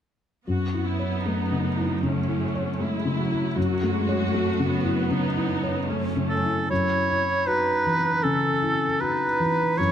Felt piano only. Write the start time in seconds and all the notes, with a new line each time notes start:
0.47 F#2
0.74 E4
0.99 C#5
1.26 A3
1.52 C#3
1.77 E4
2.03 C#3
2.29 E4
2.55 C#5
2.80 A3
3.05 C#3
3.31 E4
3.56 F#2
3.83 A3
4.09 C#5
4.34 A3
4.60 C#3
4.84 E4
5.11 C#3
5.37 E4
5.63 C#5
5.90 A3
6.16 C#3
6.45 E4
6.71 F#2
7.10 E4
7.48 F#4
7.86 E3
8.25 C#3
8.62 E4
9.02 F#4
9.40 E3
9.79 F#2